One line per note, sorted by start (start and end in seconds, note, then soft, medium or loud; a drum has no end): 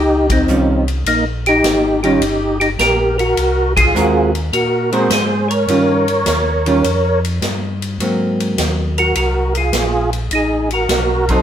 0.00 0.46 C#2 medium
0.00 0.27 D#4 medium
0.00 0.32 G4 medium
0.30 0.85 C4 medium
0.30 0.85 D#4 medium
0.30 kick medium
0.30 ride medium
0.47 1.04 C2 medium
0.47 0.84 D#3 soft
0.47 0.85 G3 medium
0.47 0.85 C#4 medium
0.47 0.85 F4 medium
0.47 hi-hat pedal soft
0.88 ride soft
1.05 1.61 A#1 medium
1.05 1.25 A#3 medium
1.05 1.25 D#4 medium
1.05 ride medium
1.46 2.01 D#4 medium
1.46 2.00 G4 loud
1.46 ride soft
1.63 2.19 G#1 medium
1.63 snare medium
1.63 hi-hat pedal medium
1.63 ride medium
2.03 2.20 D#3 medium
2.03 2.20 G3 medium
2.03 2.20 C#4 medium
2.03 2.58 D#4 medium
2.03 2.20 F4 medium
2.03 2.57 G4 medium
2.03 ride soft
2.21 2.77 G1 medium
2.21 ride medium
2.60 2.70 D#4 medium
2.60 2.69 G4 medium
2.60 ride soft
2.79 3.35 A#1 medium
2.79 3.17 G4 medium
2.79 3.16 A#4 medium
2.79 snare medium
2.79 hi-hat pedal medium
2.79 ride medium
3.18 3.74 F#4 medium
3.18 3.72 A#4 loud
3.18 ride soft
3.37 3.93 C2 medium
3.37 ride medium
3.77 4.31 F4 medium
3.77 4.31 G#4 loud
3.77 kick medium
3.77 ride medium
3.94 4.51 D#2 medium
3.94 4.31 G#3 medium
3.94 4.31 C4 medium
3.94 4.31 F#4 medium
3.94 4.32 A#4 medium
3.94 hi-hat pedal medium
4.35 ride soft
4.53 5.09 A#2 medium
4.53 4.90 F#4 medium
4.53 4.94 A#4 medium
4.53 ride soft
4.92 5.09 G#3 medium
4.92 5.09 C4 medium
4.92 5.09 F#4 medium
4.92 5.10 G#4 medium
4.92 5.10 A#4 medium
4.92 5.09 C5 medium
4.92 ride soft
5.10 5.66 G#2 loud
5.10 5.49 G#4 medium
5.10 5.47 C5 medium
5.10 snare medium
5.10 hi-hat pedal medium
5.10 ride medium
5.49 7.20 A#4 medium
5.49 7.19 C#5 loud
5.49 ride soft
5.68 6.24 G2 medium
5.68 6.05 D#3 medium
5.68 6.05 G3 medium
5.68 6.05 C#4 medium
5.68 6.05 F4 medium
5.68 ride medium
6.08 ride soft
6.26 6.82 D#2 medium
6.26 snare medium
6.26 hi-hat pedal medium
6.26 ride medium
6.66 6.82 D#3 medium
6.66 6.83 G3 medium
6.66 6.83 C#4 medium
6.66 6.83 F4 medium
6.66 ride soft
6.84 7.40 F2 medium
6.84 ride medium
7.25 ride soft
7.42 7.98 G2 medium
7.42 snare medium
7.42 hi-hat pedal medium
7.42 ride medium
7.82 ride soft
8.00 8.56 G#2 medium
8.00 9.63 F#3 medium
8.00 9.63 A#3 soft
8.00 9.64 C4 soft
8.00 ride medium
8.40 ride soft
8.58 9.14 D#2 medium
8.58 snare medium
8.58 hi-hat pedal soft
8.58 ride medium
8.98 9.15 F#4 medium
8.98 9.15 A#4 medium
8.98 ride soft
9.15 9.72 C2 medium
9.15 9.53 F#4 medium
9.15 9.57 A#4 medium
9.15 ride medium
9.55 10.10 F4 medium
9.55 10.10 G#4 medium
9.55 ride soft
9.73 10.29 A#1 medium
9.73 snare medium
9.73 hi-hat pedal medium
9.73 ride medium
10.13 ride soft
10.31 10.87 A1 medium
10.31 10.69 D#4 medium
10.31 ride medium
10.35 10.70 G#4 medium
10.71 11.25 F#4 medium
10.71 11.32 A#4 loud
10.71 ride soft
10.89 11.42 B1 medium
10.89 snare medium
10.89 hi-hat pedal medium
10.89 ride medium
11.29 11.42 F#3 medium
11.29 11.42 C4 medium
11.29 11.42 D#4 medium
11.29 11.42 A4 medium
11.29 11.42 C5 medium
11.29 kick soft
11.29 ride soft